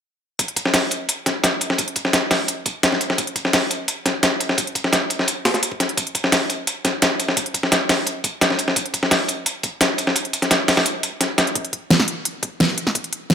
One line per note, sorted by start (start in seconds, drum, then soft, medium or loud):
0.39 kick loud
0.39 closed hi-hat medium
0.48 closed hi-hat soft
0.56 kick medium
0.56 closed hi-hat medium
0.65 snare soft
0.74 snare loud
0.74 closed hi-hat medium
0.74 open hi-hat medium
0.91 closed hi-hat medium
1.09 closed hi-hat medium
1.26 kick medium
1.26 snare soft
1.26 closed hi-hat medium
1.44 snare loud
1.44 closed hi-hat medium
1.61 closed hi-hat medium
1.70 snare soft
1.78 kick loud
1.78 closed hi-hat medium
1.88 closed hi-hat soft
1.96 kick medium
1.96 closed hi-hat medium
2.05 snare soft
2.13 snare loud
2.13 closed hi-hat medium
2.31 snare medium
2.31 closed hi-hat medium
2.31 open hi-hat medium
2.48 closed hi-hat medium
2.66 kick loud
2.66 closed hi-hat medium
2.83 snare loud
2.83 closed hi-hat medium
2.92 kick medium
2.92 snare soft
3.01 closed hi-hat medium
3.10 snare soft
3.18 kick loud
3.18 closed hi-hat medium
3.27 closed hi-hat soft
3.36 kick medium
3.36 closed hi-hat medium
3.45 snare soft
3.53 snare loud
3.53 closed hi-hat medium
3.53 open hi-hat medium
3.71 closed hi-hat medium
3.88 closed hi-hat medium
4.06 kick loud
4.06 snare soft
4.06 closed hi-hat medium
4.23 snare loud
4.23 closed hi-hat medium
4.40 closed hi-hat medium
4.49 snare soft
4.58 kick loud
4.58 closed hi-hat medium
4.67 closed hi-hat soft
4.75 kick medium
4.75 closed hi-hat medium
4.84 snare soft
4.93 snare loud
4.93 closed hi-hat medium
5.10 closed hi-hat medium
5.19 snare soft
5.28 closed hi-hat medium
5.45 kick loud
5.45 snare medium
5.45 closed hi-hat medium
5.45 open hi-hat medium
5.54 snare soft
5.54 closed hi-hat soft
5.63 closed hi-hat medium
5.72 kick medium
5.80 snare soft
5.80 closed hi-hat medium
5.89 closed hi-hat soft
5.97 kick loud
5.97 closed hi-hat medium
6.07 closed hi-hat soft
6.15 kick medium
6.15 closed hi-hat medium
6.24 snare soft
6.32 snare loud
6.32 closed hi-hat medium
6.32 open hi-hat medium
6.50 closed hi-hat medium
6.67 closed hi-hat medium
6.85 kick loud
6.85 snare soft
6.85 closed hi-hat medium
7.02 snare loud
7.02 closed hi-hat medium
7.20 closed hi-hat medium
7.28 snare soft
7.37 kick loud
7.37 closed hi-hat medium
7.46 closed hi-hat soft
7.54 kick medium
7.54 closed hi-hat medium
7.63 snare soft
7.72 snare loud
7.72 closed hi-hat medium
7.89 snare loud
7.89 closed hi-hat medium
7.89 open hi-hat medium
8.07 closed hi-hat medium
8.24 kick loud
8.24 closed hi-hat medium
8.41 snare loud
8.41 closed hi-hat medium
8.50 kick medium
8.50 snare soft
8.59 closed hi-hat medium
8.68 snare soft
8.76 kick loud
8.76 closed hi-hat medium
8.86 closed hi-hat soft
8.94 kick medium
8.94 closed hi-hat medium
9.03 snare soft
9.11 snare loud
9.11 closed hi-hat medium
9.11 open hi-hat medium
9.28 closed hi-hat medium
9.46 closed hi-hat medium
9.63 kick loud
9.63 closed hi-hat medium
9.81 snare loud
9.81 closed hi-hat medium
9.98 closed hi-hat medium
10.07 snare soft
10.16 closed hi-hat medium
10.25 closed hi-hat soft
10.33 closed hi-hat medium
10.42 snare soft
10.42 closed hi-hat soft
10.51 snare loud
10.51 closed hi-hat medium
10.51 closed hi-hat loud
10.68 snare loud
10.68 closed hi-hat medium
10.68 open hi-hat medium
10.77 snare loud
10.77 open hi-hat medium
10.86 closed hi-hat medium
11.03 closed hi-hat medium
11.21 snare soft
11.21 closed hi-hat medium
11.38 snare loud
11.38 closed hi-hat medium
11.47 closed hi-hat soft
11.55 kick loud
11.55 closed hi-hat medium
11.65 closed hi-hat soft
11.73 kick medium
11.73 closed hi-hat medium
11.90 snare loud
11.90 closed hi-hat medium
12.00 snare medium
12.08 closed hi-hat medium
12.25 closed hi-hat medium
12.43 kick loud
12.43 closed hi-hat medium
12.60 snare loud
12.60 closed hi-hat medium
12.78 closed hi-hat medium
12.87 snare soft
12.95 kick loud
12.95 closed hi-hat medium
13.04 closed hi-hat soft
13.13 closed hi-hat medium
13.30 snare loud
13.30 closed hi-hat medium